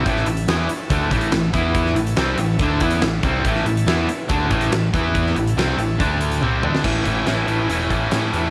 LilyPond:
<<
  \new Staff \with { instrumentName = "Tonewheel organ" } { \time 4/4 \key a \major \tempo 4 = 141 <cis' e' a' e''>2.~ <cis' e' a' e''>8 <e' b' e''>8~ | <e' b' e''>8 <cis' e' a' e''>2.~ <cis' e' a' e''>8~ | <cis' e' a' e''>2.~ <cis' e' a' e''>8 <e' b' e''>8~ | <e' b' e''>8 <cis' e' a' e''>4. <d' a' d''>4 <cis' e' a' e''>4 |
r1 | }
  \new Staff \with { instrumentName = "Steel-string acoustic guitar" } { \time 4/4 \key a \major r1 | r1 | r1 | r1 |
<a, e a cis' e'>8 <e a cis' e'>16 <a cis' e'>16 <a, e a cis' e'>8 <e a cis' e'>8. <a cis' e'>8. <a, e a cis' e'>8 <e a cis' e'>16 e'16 | }
  \new Staff \with { instrumentName = "Distorted electric guitar" } { \clef bass \time 4/4 \key a \major <a, e a>8 <a, e>8 <e b e'>8 r8 <d a d'>8 <a, e a>8 <a, e>8 <e b e'>8~ | <e b e'>8 <a, e>8 <c g c'>8 <a, e>8 <d a d'>8 <e b e'>8 <a, e>8 <c g c'>8 | <a, e a>8 <a, e>8 <e b e'>8 r8 <d a d'>8 <a, e a>8 <a, e>8 <e b e'>8~ | <e b e'>8 <a, e>8 <c g c'>8 <a, e>8 <d a d'>4 <c g c'>8 <d a d'>8 |
<a, e a cis' e'>8 <a, e a cis' e'>8 <a, e a cis' e'>8 <a, e a cis' e'>8 <a, e a cis' e'>8 <a, e a cis' e'>8 <a, e a cis' e'>8 <a, e a cis' e'>8 | }
  \new Staff \with { instrumentName = "Distorted electric guitar" } { \clef bass \time 4/4 \key a \major <a, e a>8 <a, e>8 <e b e'>8 r8 <d a d'>8 <a, e a>8 <a, e>8 <e b e'>8~ | <e b e'>8 <a, e>8 <c g c'>8 <a, e>8 <d a d'>8 <e b e'>8 <a, e>8 <c g c'>8 | <a, e a>8 <a, e>8 <e b e'>8 r8 <d a d'>8 <a, e a>8 <a, e>8 <e b e'>8~ | <e b e'>8 <a, e>8 <c g c'>8 <a, e>8 <d a d'>4 <c g c'>8 <d a d'>8 |
<a, e a>8 <a, e a>8 <a, e a>8 <a, e a>8 <a, e a>8 <a, e a>8 <a, e a>8 <a, e a>8 | }
  \new Staff \with { instrumentName = "Picked electric bass" } { \clef bass \time 4/4 \key a \major a,,8 a,,8 e,8 r8 d,8 a,,8 a,,8 e,8~ | e,8 a,,8 c,8 a,,8 d,8 e,8 a,,8 c,8 | a,,8 a,,8 e,8 r8 d,8 a,,8 a,,8 e,8~ | e,8 a,,8 c,8 a,,8 d,4 c,8 d,8 |
a,,4 a,,8 a,,8 e,,8 a,,8 a,8 e,8 | }
  \new DrumStaff \with { instrumentName = "Drums" } \drummode { \time 4/4 <hh bd>16 sn16 hh16 hh16 <hh sn>8 hh8 <hh bd>8 <hh bd>16 hh16 <hh sn>8 <hh bd>8 | <hh bd>16 sn16 hh16 hh16 <hh sn>8 hh8 <hh bd>8 <hh bd>16 hh16 <hh sn>8 <hh bd>8 | <hh bd>16 sn16 hh16 hh16 <hh sn>8 hh8 <hh bd>8 <hh bd>16 hh16 <hh sn>8 <hh bd>8 | <hh bd>16 sn16 hh16 hh16 <hh sn>8 hh8 <hh bd>8 hh16 hh16 tommh8 toml16 sn16 |
<cymc bd>8 <hh bd>8 <hh sn>8 hh8 hh8 <hh bd>8 <hh sn>8 hh8 | }
>>